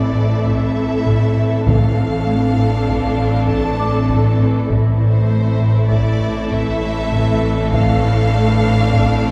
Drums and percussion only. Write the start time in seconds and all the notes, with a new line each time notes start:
0.46 taiko
1.07 taiko
1.67 taiko
2.88 taiko
3.49 taiko
4.09 taiko
4.70 taiko
5.91 taiko
6.51 taiko
7.12 taiko
7.73 taiko
8.94 taiko